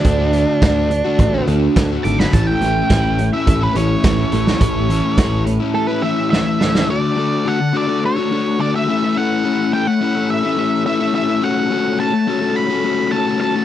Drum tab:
HH |x-x-x-x-x-x-x-x-|x-x-x-x-x-x-x-x-|x-x-x-x---------|----------------|
SD |----o-------o--o|----o-------o--o|----o-------o-oo|----------------|
BD |o---o---o---o---|o---o---o---o---|o---o-----------|----------------|

HH |----------------|----------------|
SD |----------------|----------------|
BD |----------------|----------------|